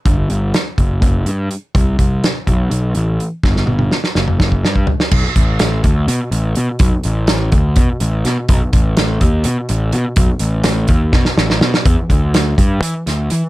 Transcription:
<<
  \new Staff \with { instrumentName = "Picked electric bass" } { \clef bass \time 7/8 \key b \phrygian \tempo 4 = 125 g,,8 g,,8 r8 fis,,8 fis,,8 g,8 r8 | c,8 c,8 r8 b,,8 b,,8 a,,8 r8 | g,,8 g,,8 r8 fis,,8 fis,,8 g,8 r8 | b,,16 r16 a,,4 d,8 b,16 r16 a,,8 b,16 r16 |
b,,16 r16 a,,4 d,8 b,16 r16 a,,8 b,16 r16 | b,,16 r16 a,,4 dis,8 b,16 r16 a,,8 b,16 r16 | b,,16 r16 a,,4 dis,8 b,16 r16 a,,8 b,16 r16 | e,16 r16 d,4 g,8 e16 r16 d,8 e16 r16 | }
  \new DrumStaff \with { instrumentName = "Drums" } \drummode { \time 7/8 <hh bd>8 hh8 <hh sn>8 <hh bd>8 <hh bd>8 hh8 hh8 | <hh bd>8 <hh bd>8 <hh sn>8 <hh bd>8 hh8 hh8 hh8 | <bd sn>16 sn16 tommh16 tommh16 sn16 sn16 sn16 toml16 <bd sn>16 bd16 sn16 bd16 tomfh16 sn16 | <cymc bd>8 <hh bd>8 <hh sn>8 <hh bd>8 hh8 hh8 hh8 |
<hh bd>8 hh8 <hh sn>8 <hh bd>8 <hh bd>8 hh8 <hh sn>8 | <hh bd>8 <hh bd>8 <hh sn>8 <hh bd>8 hh8 hh8 hh8 | <hh bd>8 hh8 <hh sn>8 <hh bd>8 <bd sn>16 sn16 sn16 sn16 sn16 sn16 | <hh bd>8 <hh bd>8 <hh sn>8 <hh bd>8 hh8 <hh sn>8 hh8 | }
>>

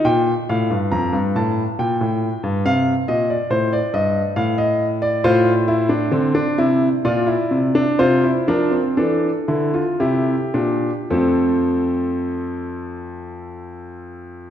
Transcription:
<<
  \new Staff \with { instrumentName = "Grand piano" } { \time 3/4 \key bes \major \tempo 4 = 66 << { g''8 f''8 bes''8 a''8 g''4 | f''8 ees''16 d''16 c''16 d''16 ees''8 f''16 ees''8 d''16 | \key f \major c''2 d''4 | c''8 bes'8 a'4 g'4 |
<f a a'>2. | } \\ { r2. | r2. | f'8 e'16 d'16 c'16 d'16 e'8 f'16 e'8 d'16 | f'16 e'16 d'16 c'16 d'8 e'16 f'16 e'8 d'8 |
c'2. | } >> }
  \new Staff \with { instrumentName = "Grand piano" } { \clef bass \time 3/4 \key bes \major bes,8 a,16 g,16 f,16 g,16 a,8 bes,16 a,8 g,16 | c8 bes,8 a,8 g,8 a,4 | \key f \major a,4 d8 c8 bes,8 c8 | c8 f8 e8 d8 c8 bes,8 |
f,2. | }
>>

